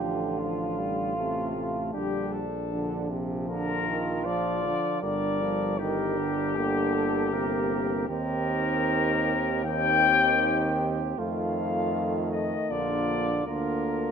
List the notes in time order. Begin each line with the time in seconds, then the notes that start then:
Already playing: A1 D3 F3 F4 G4
0.39 F3 F4
0.79 G3
1.17 C3 A3
1.56 A3
1.93 A#1 D3 G3 D4 G4
2.33 A4
2.72 D3 F3
3.10 C3
3.48 D3 F4 A#4
3.88 D#3
4.25 F3 D5
4.65 D3
5.01 G1 D3 G3 A#4 D5
5.41 F3
5.78 D#3 G3 G4 A#4
6.18 D3
6.56 D3 A#3 G4
6.93 A4
7.32 C3 A#3 A#4
8.08 D#2 D#3 C4 G4 A#4
9.65 D#3 C4 G4 G5
11.18 F2 D#3 A3 F4 F5
12.32 D#5
12.70 A#1 D3 A#3 F4 D5
13.47 D2 D3 A#3 F4 A#4